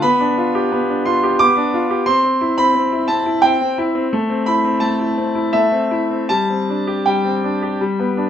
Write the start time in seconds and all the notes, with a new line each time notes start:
0.02 B3 B5
0.20 D4
0.38 F4
0.55 G4
0.72 B3
0.89 D4
1.05 F4 C6
1.23 G4
1.39 B3 D6
1.56 D4
1.74 F4
1.90 G4
2.06 C4 C6
2.24 C4
2.41 E4
2.58 C4 B5
2.75 C4
2.92 E4
3.08 C4 A5
3.26 E4
3.42 C4 G5
3.61 C4
3.78 E4
3.95 C4
4.13 A3
4.29 C4
4.46 E4 B5
4.64 C4
4.80 A3 A5
4.99 E4
5.18 C4
5.35 E4
5.53 A3 E5
5.72 C4
5.91 E4
6.10 C4
6.29 G3 A5
6.50 C4
6.70 D4
6.87 G4
7.06 G3 G5
7.25 C4
7.44 D4
7.62 G4
7.81 G3
7.99 B3
8.17 D4